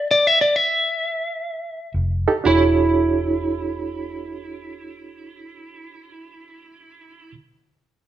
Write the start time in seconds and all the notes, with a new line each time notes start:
0.11 D5
0.27 E5
0.41 D5
0.56 E5
1.94 F1
2.28 D#4 G4 A4
2.44 E1 D4 E4 F#4 G#4 C#5